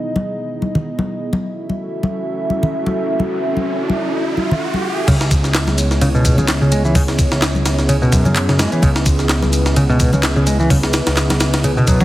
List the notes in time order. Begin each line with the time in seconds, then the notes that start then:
Already playing: B3 D#4 E4 G#4 D#5
0.16 high conga
0.62 high conga
0.75 low conga
0.99 high conga
1.33 C#4 E4 F#4 A4 E5, riser, high conga
1.70 high conga
2.03 high conga
2.50 high conga
2.63 low conga
2.86 high conga
3.20 high conga
3.57 high conga
3.90 high conga
4.37 high conga
4.51 low conga
4.74 high conga
5.08 C#2 C#3 B3 C#4 E4 G#4 C#5, kick, crash, ride, high conga, shaker
5.21 snare, shaker
5.31 kick, ride, shaker
5.44 snare, shaker
5.55 snare, clap, ride, shaker
5.67 snare, high conga, shaker
5.78 ride, shaker
5.91 snare, shaker
6.01 C#3, ride, shaker
6.15 B2, shaker
6.25 kick, ride, shaker
6.38 C#3, high conga, low conga, shaker
6.48 snare, clap, ride, shaker
6.62 C#3, shaker
6.72 G#3, ride, shaker
6.85 E3, shaker
6.95 C#3, kick, open hi-hat, high conga, shaker
7.08 snare, shaker
7.19 kick, ride, shaker
7.32 C#2, snare, shaker
7.42 snare, clap, ride, shaker
7.55 high conga, shaker
7.66 snare, ride, shaker
7.78 snare, shaker
7.89 C#3, ride, shaker
8.02 B2, shaker
8.12 F#2, kick, ride, shaker
8.25 C#3, high conga, low conga, shaker
8.36 clap, ride, shaker
8.49 C#3, snare, shaker
8.59 G#3, snare, ride, shaker
8.72 E3, ride, shaker
8.82 C#2 C#3 B4, kick, ride, high conga, shaker
8.96 snare, shaker
9.06 kick, ride, shaker
9.19 snare, shaker
9.29 snare, clap, ride, shaker
9.43 snare, high conga, shaker
9.53 ride, shaker
9.66 snare, shaker
9.76 C#3, ride, shaker
9.89 B2, shaker
10.00 kick, ride, shaker
10.13 C#3, high conga, low conga, shaker
10.23 snare, clap, ride, shaker
10.36 C#3, shaker
10.47 G#3, ride, shaker
10.60 E3, shaker
10.70 C#3, kick, open hi-hat, high conga, shaker
10.83 snare, shaker
10.93 snare, ride, shaker
11.06 C#2, snare, ride, shaker
11.17 snare, clap, ride, shaker
11.30 snare, ride, high conga, shaker
11.40 snare, ride, shaker
11.53 snare, ride, shaker
11.64 C#3, ride, shaker
11.77 B2, shaker
11.87 F#2 B2, kick, ride, shaker
12.00 F#3, kick, high conga, low conga, shaker